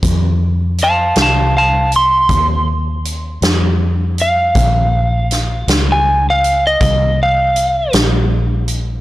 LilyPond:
<<
  \new Staff \with { instrumentName = "Electric slide guitar" } { \time 12/8 \key bes \minor \tempo 4. = 53 r4 <f'' a''>8 <f'' a''>8 <f'' a''>8 c'''4 r2 f''8~ | f''4.~ f''16 aes''8 f''8 ees''8. f''4 r4. | }
  \new Staff \with { instrumentName = "Fingered electric bass" } { \clef bass \time 12/8 \key bes \minor f,4. c,4. ees,4. f,4. | bes,,4. des,4. c,4. bes,,4. | }
  \new DrumStaff \with { instrumentName = "Drums" } \drummode { \time 12/8 <hh bd>4 hh8 <hh sn>4 hh8 <hh bd>4 hh8 <hh sn>4 hh8 | <hh bd>4 <hh sn>8 <hh sn>4 hh8 <hh bd>4 hh8 <hh sn>4 hh8 | }
>>